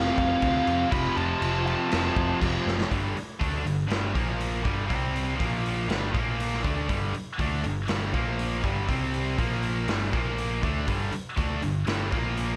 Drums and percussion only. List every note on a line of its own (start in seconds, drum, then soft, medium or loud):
0.18 kick medium
0.18 crash medium
0.42 kick medium
0.42 crash medium
0.67 crash medium
0.92 kick loud
0.92 crash medium
1.17 crash medium
1.42 crash medium
1.67 crash medium
1.92 snare loud
1.92 crash medium
2.16 kick medium
2.16 crash medium
2.41 kick medium
2.41 crash medium
2.68 snare medium
2.81 snare medium
2.92 kick medium
2.92 open hi-hat medium
3.17 open hi-hat soft
3.41 kick medium
3.41 open hi-hat medium
3.67 open hi-hat soft
3.90 snare loud
3.90 open hi-hat medium
4.15 kick medium
4.15 open hi-hat soft
4.40 open hi-hat medium
4.65 kick medium
4.65 open hi-hat soft
4.90 kick loud
4.90 open hi-hat medium
5.16 open hi-hat soft
5.40 kick loud
5.40 open hi-hat medium
5.66 open hi-hat soft
5.90 snare medium
5.90 open hi-hat medium
6.15 kick medium
6.15 open hi-hat soft
6.40 open hi-hat medium
6.53 snare soft
6.64 kick loud
6.64 open hi-hat soft
6.89 kick medium
6.89 open hi-hat medium
7.14 open hi-hat medium
7.39 kick loud
7.39 open hi-hat medium
7.64 open hi-hat soft
7.88 snare loud
7.88 open hi-hat medium
8.14 kick loud
8.14 open hi-hat soft
8.39 open hi-hat medium
8.64 kick medium
8.64 open hi-hat soft
8.89 kick medium
8.89 open hi-hat medium
9.14 open hi-hat soft
9.38 kick medium
9.38 open hi-hat medium
9.63 open hi-hat soft
9.88 snare loud
9.88 open hi-hat medium
10.13 kick medium
10.13 open hi-hat soft
10.38 open hi-hat medium
10.63 kick medium
10.63 open hi-hat soft
10.88 kick medium
10.88 open hi-hat medium
11.12 open hi-hat soft
11.37 kick medium
11.37 open hi-hat medium
11.62 open hi-hat soft
11.87 snare loud
11.87 open hi-hat medium
12.12 kick medium
12.12 open hi-hat soft
12.37 open hi-hat medium